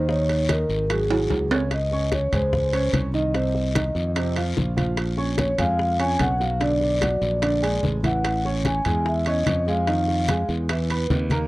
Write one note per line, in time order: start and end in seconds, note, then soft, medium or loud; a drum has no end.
0.00 0.64 D#2 medium
0.08 0.42 D#3 medium
0.08 0.42 D#4 medium
0.08 0.51 C#5 loud
0.08 0.42 D#5 medium
0.08 high bongo medium
0.08 high conga soft
0.08 long guiro medium
0.29 high bongo soft
0.29 high conga soft
0.29 high timbale medium
0.49 0.83 D#3 medium
0.49 0.83 D#4 medium
0.49 0.92 A#4 medium
0.49 0.83 D#5 medium
0.49 high bongo medium
0.49 high conga medium
0.49 high timbale medium
0.49 short guiro medium
0.69 1.27 G#1 medium
0.69 high conga soft
0.69 short guiro medium
0.90 1.07 F#3 medium
0.90 1.07 F#4 medium
0.90 1.07 G#4 medium
0.90 1.48 G#4 medium
0.90 high bongo medium
0.90 high conga soft
0.90 high timbale loud
0.90 long guiro medium
1.10 1.44 F#3 medium
1.10 1.44 F#4 medium
1.10 1.44 G#4 medium
1.10 high bongo soft
1.10 high conga soft
1.10 high timbale medium
1.30 2.27 C#2 medium
1.30 high bongo soft
1.30 low bongo medium
1.30 high conga medium
1.30 high timbale medium
1.30 short guiro medium
1.51 1.68 C#3 medium
1.51 1.68 C#4 medium
1.51 1.68 C#5 medium
1.51 high bongo soft
1.51 low timbale loud
1.51 short guiro medium
1.71 2.11 D#5 loud
1.71 high bongo medium
1.71 high conga soft
1.71 high timbale medium
1.71 long guiro medium
1.91 2.26 C#4 medium
1.91 2.26 C#5 medium
1.91 2.26 C#6 medium
1.91 high bongo soft
1.91 high conga soft
2.12 2.32 C#5 medium
2.12 high bongo medium
2.12 high conga medium
2.12 high timbale medium
2.12 short guiro medium
2.32 2.90 C#2 medium
2.32 2.66 G#3 medium
2.32 2.66 G#4 medium
2.32 2.90 C5 loud
2.32 2.67 G#5 medium
2.32 high conga soft
2.32 low conga medium
2.32 high timbale medium
2.32 short guiro medium
2.53 high bongo medium
2.53 high conga soft
2.53 low conga medium
2.53 long guiro medium
2.73 3.07 C#4 medium
2.73 3.07 C#5 medium
2.73 3.07 C#6 medium
2.73 high bongo soft
2.73 high conga soft
2.73 high timbale medium
2.93 3.89 C2 medium
2.93 high bongo soft
2.93 low bongo medium
2.93 high conga medium
2.93 high timbale medium
2.93 short guiro medium
3.14 3.31 D#3 medium
3.14 3.31 D#4 medium
3.14 3.31 D#5 medium
3.14 4.33 D#5 medium
3.14 high bongo soft
3.14 high conga soft
3.14 short guiro medium
3.34 3.68 C3 medium
3.34 3.69 C4 medium
3.34 3.69 C5 medium
3.34 high bongo medium
3.34 high conga soft
3.34 high timbale medium
3.34 long guiro medium
3.55 high bongo soft
3.55 high conga soft
3.75 4.09 D#3 medium
3.75 4.09 D#4 medium
3.75 4.09 D#5 medium
3.75 high bongo medium
3.75 high conga loud
3.75 high timbale loud
3.75 short guiro medium
3.95 4.53 F2 medium
3.95 high conga soft
3.95 short guiro medium
4.16 4.33 C3 medium
4.16 4.33 C4 medium
4.16 4.34 C5 medium
4.16 high bongo medium
4.16 high conga soft
4.16 high timbale medium
4.16 long guiro medium
4.36 4.70 F3 medium
4.36 4.71 F4 medium
4.36 4.71 F5 medium
4.36 high bongo soft
4.36 high conga soft
4.36 high timbale medium
4.57 5.53 A#1 medium
4.57 high bongo soft
4.57 low bongo medium
4.57 high conga medium
4.57 short guiro medium
4.76 5.10 F3 medium
4.76 5.11 F4 medium
4.76 5.11 F5 medium
4.76 high bongo soft
4.76 high conga medium
4.76 high timbale medium
4.76 short guiro medium
4.97 high bongo medium
4.97 high timbale medium
4.97 long guiro medium
5.17 5.51 C#4 medium
5.17 5.52 C#5 medium
5.17 5.52 C#6 medium
5.17 high bongo soft
5.17 high conga soft
5.38 5.58 C#5 medium
5.38 high bongo medium
5.38 high conga loud
5.38 high timbale medium
5.38 short guiro medium
5.58 6.16 F2 medium
5.58 5.92 G#3 medium
5.58 5.93 G#4 medium
5.58 5.97 F5 loud
5.58 5.93 G#5 medium
5.58 high conga soft
5.58 low conga medium
5.58 high timbale medium
5.58 short guiro medium
5.79 high bongo medium
5.79 high conga soft
5.79 long guiro medium
5.99 6.33 C#4 medium
5.99 6.33 C#5 medium
5.99 6.19 G#5 loud
5.99 6.33 C#6 medium
5.99 high bongo soft
5.99 high conga soft
5.99 high timbale medium
6.19 7.16 B1 medium
6.19 6.42 F#5 loud
6.19 high bongo soft
6.19 low bongo medium
6.19 high conga medium
6.19 high timbale medium
6.19 low timbale medium
6.19 short guiro medium
6.40 6.57 F#3 medium
6.40 6.57 F#4 medium
6.40 6.60 F5 medium
6.40 6.58 F#5 medium
6.40 high bongo soft
6.40 high conga soft
6.40 short guiro medium
6.60 6.94 D3 medium
6.60 6.95 D4 medium
6.60 6.95 D5 medium
6.60 7.80 D5 loud
6.60 high bongo medium
6.60 high conga soft
6.60 high timbale medium
6.60 long guiro medium
6.81 high bongo soft
6.81 high conga soft
7.01 7.35 F#3 medium
7.01 7.35 F#4 medium
7.01 7.36 F#5 medium
7.01 high bongo medium
7.01 high conga medium
7.01 high timbale medium
7.01 short guiro medium
7.22 7.79 A#1 medium
7.22 high conga soft
7.22 short guiro medium
7.42 7.60 D3 medium
7.42 7.59 D4 medium
7.42 7.60 D5 medium
7.42 high bongo medium
7.42 high conga soft
7.42 high timbale medium
7.42 long guiro medium
7.62 7.96 G#3 medium
7.62 7.96 G#4 medium
7.62 7.96 G#5 medium
7.62 high bongo soft
7.62 high conga soft
7.62 high timbale medium
7.83 8.80 A1 medium
7.83 high bongo soft
7.83 low bongo medium
7.83 high conga medium
7.83 short guiro medium
8.04 8.37 E3 medium
8.04 8.37 E4 medium
8.04 8.38 E5 medium
8.04 8.43 F#5 medium
8.04 high bongo soft
8.04 high conga medium
8.04 high timbale medium
8.04 short guiro medium
8.24 high bongo medium
8.24 high conga soft
8.24 high timbale medium
8.24 long guiro medium
8.45 8.79 C#4 medium
8.45 8.79 C#5 medium
8.45 8.79 C#6 medium
8.45 high bongo soft
8.45 high conga soft
8.65 9.08 G#5 loud
8.65 high bongo medium
8.65 high conga medium
8.65 high timbale medium
8.65 short guiro medium
8.85 9.43 E2 medium
8.85 9.20 G#3 medium
8.85 9.20 G#4 medium
8.85 9.20 G#5 medium
8.85 high conga soft
8.85 low conga medium
8.85 high timbale medium
8.85 short guiro medium
9.06 9.17 E5 medium
9.06 high bongo medium
9.06 high conga soft
9.06 long guiro medium
9.26 9.60 C#4 medium
9.26 9.60 C#5 medium
9.26 9.65 D#5 loud
9.26 9.61 C#6 medium
9.26 high bongo soft
9.26 high conga soft
9.26 high timbale medium
9.46 10.43 F2 medium
9.46 high bongo soft
9.46 low bongo medium
9.46 high conga medium
9.46 high timbale medium
9.46 short guiro medium
9.67 9.84 G#3 medium
9.67 9.85 G#4 medium
9.67 10.46 F5 medium
9.67 9.85 G#5 medium
9.67 high bongo soft
9.67 high conga soft
9.67 short guiro medium
9.87 10.21 D#3 medium
9.87 10.22 D#4 medium
9.87 10.22 D#5 medium
9.87 high bongo medium
9.87 high conga soft
9.87 high timbale medium
9.87 long guiro medium
10.08 high bongo soft
10.08 high conga soft
10.28 10.63 G#3 medium
10.28 10.63 G#4 medium
10.28 10.63 G#5 medium
10.28 high bongo medium
10.28 high conga medium
10.28 high timbale medium
10.28 short guiro medium
10.49 11.06 E2 medium
10.49 high conga soft
10.49 short guiro medium
10.69 10.87 E3 medium
10.69 10.87 E4 medium
10.69 10.87 E5 medium
10.69 high bongo medium
10.69 high conga soft
10.69 high timbale loud
10.69 long guiro medium
10.90 11.24 B3 medium
10.90 11.24 B4 medium
10.90 11.24 B5 medium
10.90 high bongo soft
10.90 high conga soft
10.90 high timbale medium
11.10 11.47 D#2 loud
11.10 high bongo soft
11.10 low bongo medium
11.10 high conga medium
11.10 low timbale medium
11.10 short guiro medium
11.30 11.47 A#3 medium
11.30 11.47 A#4 medium
11.30 11.47 A#5 medium
11.30 high bongo soft
11.30 high conga medium
11.30 high timbale medium
11.30 short guiro medium